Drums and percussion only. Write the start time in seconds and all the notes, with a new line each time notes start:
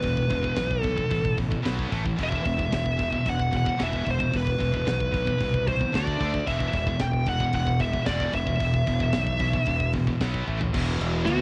0.02 kick, open hi-hat
0.17 kick
0.30 kick, open hi-hat
0.44 kick
0.56 kick, snare, open hi-hat
0.71 kick
0.83 kick, open hi-hat
0.98 kick
1.11 kick, open hi-hat
1.25 kick
1.38 kick, open hi-hat
1.52 kick
1.65 kick, snare, open hi-hat
1.79 kick
1.92 kick, open hi-hat
2.06 kick
2.19 kick, open hi-hat
2.32 kick
2.45 kick, open hi-hat
2.59 kick
2.73 kick, snare, open hi-hat
2.86 kick
2.99 kick, open hi-hat
3.13 kick
3.26 kick, open hi-hat
3.40 kick
3.53 kick, open hi-hat
3.66 kick
3.80 kick, snare, open hi-hat
3.93 kick
4.06 kick, open hi-hat
4.20 kick
4.33 kick, open hi-hat
4.47 kick
4.60 kick, open hi-hat
4.74 kick
4.87 kick, snare, open hi-hat
5.00 kick
5.14 kick, open hi-hat
5.27 kick
5.41 kick, open hi-hat
5.54 kick
5.67 kick, open hi-hat
5.81 kick
5.94 kick, snare, open hi-hat
6.07 kick
6.20 kick, open hi-hat
6.34 kick
6.47 kick, open hi-hat
6.60 kick
6.73 kick, open hi-hat
6.87 kick
7.00 kick, snare, open hi-hat
7.13 kick
7.26 kick, open hi-hat
7.40 kick
7.53 kick, open hi-hat
7.67 kick
7.80 kick, open hi-hat
7.94 kick
8.06 kick, snare, open hi-hat
8.20 kick
8.33 kick, open hi-hat
8.47 kick
8.60 kick, open hi-hat
8.74 kick
8.87 kick, open hi-hat
9.00 kick
9.13 kick, snare, open hi-hat
9.27 kick
9.39 kick, open hi-hat
9.53 kick
9.66 kick, open hi-hat
9.80 kick
9.93 kick, open hi-hat
10.07 kick
10.21 kick, snare, open hi-hat
10.34 kick
10.47 kick
10.61 floor tom
10.74 kick, crash
11.01 ride
11.27 ride